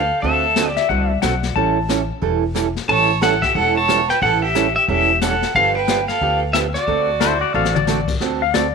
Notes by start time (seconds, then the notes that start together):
Already playing: A4 F5
0.22 D2 D3 A3 C4 F#4 A4 E5, brush sweep, kick
0.56 D3 A3 C4 F#4 A4, snare, hi-hat pedal
0.69 G4 D5
0.76 E5, snare
0.89 C2 D3 A3 C4 F#4 A4 F#5, brush sweep, kick
1.09 E5
1.22 B1 D3 A3 C4 F#4 A4 F#5, snare, hi-hat pedal
1.43 snare
1.55 A1 E3 G3 C#4 E4 A4 A5, brush sweep, kick
1.89 E3 G3 C#4 E4 A4, snare, hi-hat pedal
2.22 E1 E3 G3 C#4 E4 A4, brush sweep, kick
2.55 E3 G3 C#4 E4 A4, snare, hi-hat pedal
2.76 snare
2.88 A1 E3 G3 C#4 E4 A4 C#5 A5, brush sweep, kick
3.22 E3 G3 C#4 E4 A4 F#5, snare, hi-hat pedal
3.42 G4 E5, kick, snare
3.55 E1 E3 G3 C#4 E4 A4 F#5, brush sweep, kick
3.76 C#5 A5
3.88 E3 G3 C#4 E4 A4, snare, hi-hat pedal
4.09 B4 G5, snare
4.21 A1 E3 G3 C#4 E4 A4 F#5, brush sweep, kick
4.42 G4 E5
4.55 E3 G3 C#4 E4 A4, snare, hi-hat pedal
4.76 G4 E5
4.88 E1 E3 G3 C#4 E4 G4 A4 E5, brush sweep, kick
5.21 E3 G3 C#4 E4 A4 F#5, snare, hi-hat pedal
5.42 snare
5.55 G1 D3 F3 B3 D4 G4 A4 F5, brush sweep, kick
5.75 B4 G5
5.87 D3 F3 B3 D4 G4, snare, hi-hat pedal
6.08 A4 F5, snare
6.21 D2 D3 F3 B3 D4 G4, brush sweep, kick
6.53 D3 F3 B3 D4 G4 E5, snare, hi-hat pedal
6.74 F#4 D5, snare
6.87 D2 D3 A3 C4 F#4 A4, brush sweep, kick
7.20 D3 A3 C4 E4 F#4 A4 C5, snare, hi-hat pedal
7.41 F#4 D5
7.54 A1 D3 A3 C4 F#4 A4 F5
7.65 snare
7.75 D5, mid tom
7.87 D3 A3 C4 F#4 A4, snare, hi-hat pedal
8.08 kick, crash
8.21 D2 D3 A3 C4 F#4 A4, brush sweep, kick, snare
8.42 F5
8.54 D3 A3 C4 F#4 A4 D5, kick, snare, hi-hat pedal